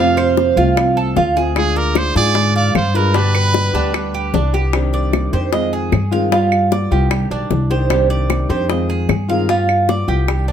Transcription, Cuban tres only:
Already playing: F4
0.17 C5
0.57 F4
0.97 A4
1.17 F4
1.37 G#4
1.76 D5
2.16 G#4
2.56 F5
2.95 B4
3.15 D4
3.35 B4
3.75 D4
4.14 G4
4.34 D4
4.54 G4
4.94 D5
5.33 C5
5.53 D#5
5.73 G#4
6.12 F5
6.32 F4
6.72 D5
6.92 G4
7.31 D4
7.71 C5
8.10 D5
8.50 C5
8.70 D#5
8.90 G#4
9.29 F5
9.49 F4
9.89 D5
10.08 G4
10.48 D4

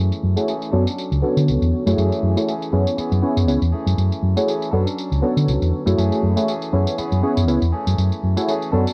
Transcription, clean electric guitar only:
Already playing: E3 A3 C#4 G#4
0.47 E3 A3 C#4 G#4
0.71 C#4 D4 A4
0.76 F#3
1.97 E3 A3 C#4 G#4
2.47 E3 A3 C#4 G#4
2.97 E3 B3 C#4 G#4
3.72 E3 A3 C#4 G#4
4.47 E3 A3 C#4 G#4
4.71 C#4 D4 A4
4.76 F#3
5.97 E3 A3 C#4 G#4
6.47 E3 A3 C#4 G#4
6.97 E3 B3 C#4 G#4
7.72 E3 A3 C#4 G#4
8.47 E3 A3 C#4 G#4
8.72 C#4 D4 A4
8.76 F#3

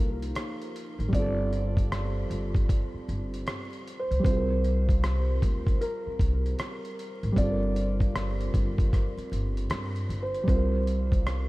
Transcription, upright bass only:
Already playing: C2
0.99 G#1
1.13 G1
2.30 G1
2.94 muted upright bass stroke
3.08 G1
4.11 C#2
4.25 C2
5.42 D2
6.06 muted upright bass stroke
6.19 C2
7.23 G#1
7.37 G1
8.54 G1
9.17 muted upright bass stroke
9.32 G1
9.70 G2
10.09 G1
10.48 C2

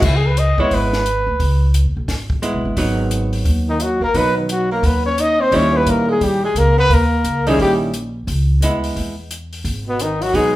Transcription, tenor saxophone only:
3.68 D#3
3.80 F#3
4.01 A#3
4.15 B3
4.36 D#3
4.49 F#3
4.71 A#3
4.85 B3
5.06 C#4
5.19 D#4
5.40 C4
5.52 C#4
5.74 B3
5.88 A#3
6.08 G#3
6.22 G3
6.43 G#3
6.57 A#3
6.78 B3
6.91 A#3
7.47 G#3
7.61 G3
9.87 B2
10.01 D#3
10.22 F#3
10.35 G#3

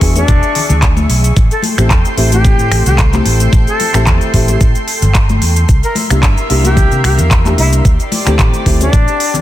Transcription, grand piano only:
0.01 B3 D4 F#4 G#4
0.16 B3 D4 F#4 G#4
1.78 A3 C4 E4 G4
2.17 A3 C4 E4 G4
2.31 A3 C4 E4 G4
3.12 A3 C4 E4 G4
3.94 A3 C4 E4 G4
4.34 A3 C4 E4 G4
4.48 A3 C4 E4 G4
6.10 A#3 D4 E4 G4
6.50 A#3 D4 E4 G4
6.64 A#3 D4 E4 G4
7.45 A#3 D4 E4 G4
8.26 A3 C4 E4 G4
8.66 A3 C4 E4 G4
8.80 A3 C4 E4 G4

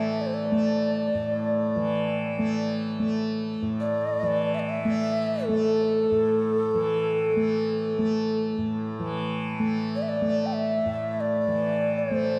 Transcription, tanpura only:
Already playing: A2 E3 A3
0.52 A3
1.15 A2
1.76 E3
2.39 A3
2.99 A3
3.62 A2
4.22 E3
4.85 A3
5.49 A3
6.11 A2
6.74 E3
7.36 A3
7.98 A3
8.58 A2
8.99 E3
9.59 A3
10.22 A3
10.86 A2
11.47 E3
12.11 A3

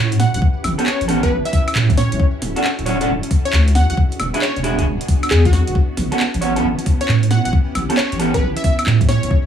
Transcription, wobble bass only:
Already playing: A2
0.34 G1
0.64 A1
1.01 A1
1.31 A1
1.75 A2
2.12 G1
2.42 D1
2.79 D1
3.09 D1
3.53 D2
3.90 A1
4.20 E1
4.57 E1
4.86 E1
5.31 E2
5.68 D1
5.97 A1
6.34 A1
6.64 A1
7.09 A2
7.45 G1
7.75 A1
8.12 A1
8.42 A1
8.86 A2
9.23 G1

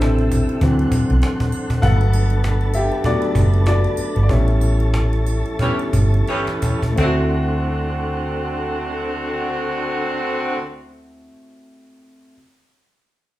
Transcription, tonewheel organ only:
Already playing: C3 G3 A3 E4
0.61 D3 C4 F#4
1.82 D3 B3 A4
4.29 E3 C#4
6.98 D3 A3 C4 F#4

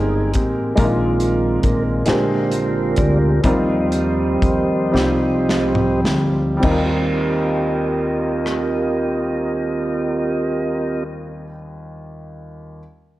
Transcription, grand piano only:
Already playing: G#2 G#3 C4 D#4 G4 A#4
0.75 A#2 G#3 A#3 D4 F4 A#4
0.84 D#4
2.06 A#2 G#3 C4 D4 G4 A#4
3.44 D#3 G3 C4 D#4 F4 A#4
4.92 G3 C4 D#4 F4 G4
6.57 G3 C4
6.63 D#2 D#4 F4
6.70 A#4

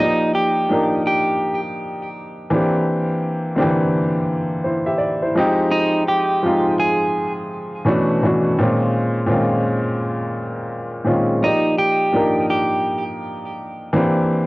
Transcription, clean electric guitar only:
0.00 D#4
0.35 G4
1.07 G4
5.71 D#4
6.08 G4
6.79 G#4
11.44 D#4
11.78 G4
12.50 G4

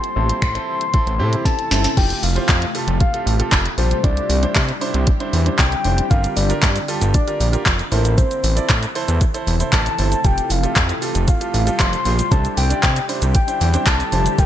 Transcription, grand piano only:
0.16 C4 E4 A4
0.55 C4 E4 A4
0.94 C4 E4 A4
1.19 C4 E4 G4
1.71 C4 E4 A4
1.97 F4 G4 A4
2.36 F4 G4 C5
2.75 F4 G4 A4
3.13 F4 G4 A4
3.39 F4 G4 A4
3.78 F4 G4 A4
4.03 D4 E4 C5
4.43 D4 E4 C5
4.81 D4 E4 C5
5.20 D4 E4 C5
5.46 D4 E4 C5
5.85 D4 E4 C5
6.10 F4 G4 A#4
6.50 F4 G4 A#4
6.88 F4 G4 A4
7.27 F4 G4 A#4
7.52 F4 G4 A#4
7.91 E4 A4 C5
8.56 E4 A4 D5
8.95 E4 A4 C5
9.34 E4 A4 C5
9.60 E4 A4 C5
9.99 E4 A4 C5
10.24 F4 G4 A4
10.63 F4 G4 A4
11.02 F4 G4 A4
11.41 F4 G4 A4
11.66 F4 G4 A4
12.05 F4 G4 C5
12.31 D4 E4 C5
12.70 D4 E4 D5
13.08 D4 E4 C5
13.47 D4 E4 C5
13.73 D4 E4 C5
14.12 D4 E4 C5
14.38 F4 G4 A#4

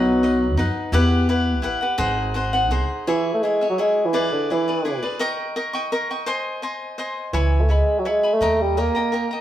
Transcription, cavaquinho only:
Already playing: D#4 B4 D#5 F#5
0.23 D#4 B4 D#5 F#5
0.57 D#4 B4 D#5 F#5
0.93 E4 G4 B4 F#5
1.29 E4 G4 B4 F#5
1.62 E4 G4 B4 F#5
1.81 G4 B4 F#5
1.98 D#4 G#4 C5 F#5
2.34 D#4 G#4 C5 F#5
2.53 G#4 C5 F#5
2.71 D#4 G#4 C5 F#5
3.07 E4 G#4 C#5 E5
3.43 E4 G#4 C#5 E5
3.61 G#4 C#5 E5
3.78 E4 G#4 C#5 E5
4.13 E4 G#4 B4 D5
4.50 E4 G#4 B4 D5
4.68 G#4 B4 D5
4.85 E4 G#4 B4 D5
5.03 G#4 B4 D5
5.19 A#4 D#5 G5 C#6
5.56 A#4 D#5 G5 C#6
5.73 D#5 G5 C#6
5.92 A#4 D#5 G5 C#6
6.11 D#5 G5 C#6
6.26 C5 D#5 G#5 C6
6.62 C5 D#5 G#5 C6
6.98 C5 D#5 G#5 C6
7.33 C#5 E5 G#5 B5
7.69 C#5 E5 G#5 B5
8.05 C#5 E5 G#5 B5
8.23 E5 G#5 B5
8.41 A#4 D#5 G5 A#5
8.77 A#4 D#5 G5 A#5
8.95 D#5 G5 A#5
9.12 A#4 D#5 G5 A#5
9.31 D#5 G5 A#5

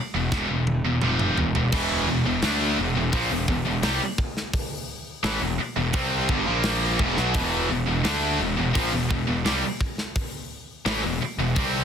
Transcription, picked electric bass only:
0.14 E1
0.32 E1
0.49 E1
0.84 E1
1.02 F1
1.37 E1
1.55 E1
1.72 E1
2.08 E1
2.25 E1
2.43 D2
2.78 E1
2.96 E1
3.13 A#1
3.31 E1
3.48 E1
3.65 E1
3.83 C2
5.24 A1
5.41 E1
5.60 muted picked electric bass stroke
5.77 E1
5.94 C2
6.29 G1
6.47 A#1
6.99 E1
7.17 B1
7.35 E1
7.70 E1
7.87 E1
8.05 D2
8.40 E1
8.58 E1
8.75 A#1
8.92 E1
9.10 E1
9.28 E1
9.45 C2
10.86 A1
11.04 E1
11.21 muted picked electric bass stroke
11.38 E1
11.56 C2

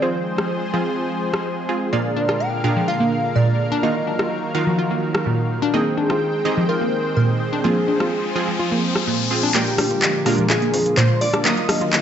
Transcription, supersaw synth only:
0.02 F3 C4 F4 G#4
0.74 F3 C4 F4 G#4
1.69 C4 F4 G#4
1.93 A#2 D4 F4 G#4 A#4 F5
2.64 A#2 D4 F4 G#4 A#4 F5
3.83 D#3 D#4 F4 F#4 A#4 F5
4.55 D#3 D#4 F4 F#4 A#4 F5
5.74 D#3 C4 D#4 G#4 D#5 G5
6.45 D#3 C4 D#4 G4 G#4 D#5
7.64 F3 C4 F4 G#4
8.36 F3 C4 F4 G#4
9.31 C4 F4 G#4
9.55 A#2 G#3 A#3 D4 F4 A#4
10.26 A#2 G#3 A#3 D4 F4 A#4
11.45 F#3 A#3 D#4 F4 A#4

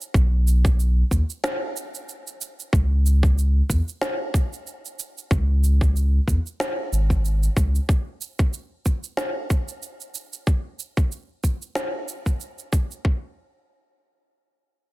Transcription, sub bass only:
0.14 B1
1.11 D#2
2.73 C#2
3.70 E2
5.31 C#2
6.28 E2
6.92 G#1
7.57 C#2

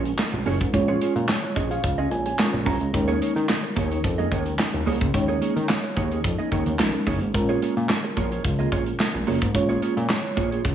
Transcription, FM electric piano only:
Already playing: G#3 C#4 F4 A#4
0.73 G#3 C#4 F4 C#5
1.56 D#5
1.71 F5
1.84 F5
2.11 G#5
2.26 G#5
2.39 G#3 C#4 F4 A#4 C#6
2.66 A#5
2.93 G#3 C#4 D#4 A#4
5.13 G#3 C#4 D#4 C#5
6.79 G#3 C#4 D#4 A#4
7.34 G#3 C4 F4 A#4
7.41 C#4
9.54 G#3 C#4 F4 C#5

